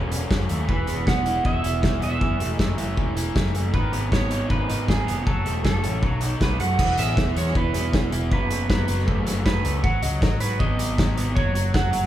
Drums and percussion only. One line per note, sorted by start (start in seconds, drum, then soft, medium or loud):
0.12 closed hi-hat medium
0.31 kick loud
0.31 snare loud
0.41 snare soft
0.49 closed hi-hat medium
0.69 kick loud
0.87 closed hi-hat medium
1.07 kick loud
1.07 snare loud
1.26 closed hi-hat medium
1.45 kick medium
1.64 closed hi-hat medium
1.83 kick loud
1.83 snare medium
2.02 closed hi-hat medium
2.21 kick loud
2.40 closed hi-hat medium
2.59 kick medium
2.59 snare loud
2.78 closed hi-hat medium
2.97 kick loud
3.17 closed hi-hat medium
3.36 kick loud
3.36 snare loud
3.46 snare soft
3.55 closed hi-hat medium
3.74 kick loud
3.93 closed hi-hat medium
4.12 kick loud
4.12 snare loud
4.31 closed hi-hat medium
4.50 kick loud
4.70 closed hi-hat medium
4.88 kick loud
4.88 snare loud
5.08 closed hi-hat medium
5.27 kick loud
5.46 closed hi-hat medium
5.65 kick loud
5.65 snare loud
5.84 closed hi-hat medium
6.03 kick medium
6.21 closed hi-hat medium
6.41 kick loud
6.41 snare loud
6.60 closed hi-hat medium
6.79 kick loud
6.79 crash loud
6.98 closed hi-hat medium
7.17 kick loud
7.17 snare loud
7.37 closed hi-hat medium
7.47 snare soft
7.55 kick loud
7.74 snare soft
7.74 closed hi-hat medium
7.93 kick loud
7.93 snare loud
8.12 closed hi-hat medium
8.32 kick loud
8.51 closed hi-hat medium
8.70 kick loud
8.70 snare loud
8.88 closed hi-hat medium
8.99 snare soft
9.08 kick loud
9.27 snare soft
9.27 closed hi-hat medium
9.46 kick loud
9.46 snare loud
9.65 closed hi-hat medium
9.84 kick loud
10.02 closed hi-hat medium
10.22 kick loud
10.22 snare loud
10.40 closed hi-hat medium
10.60 kick loud
10.79 closed hi-hat medium
10.98 kick loud
10.98 snare loud
11.18 closed hi-hat medium
11.37 kick loud
11.55 closed hi-hat medium
11.74 kick loud
11.74 snare loud
11.93 closed hi-hat loud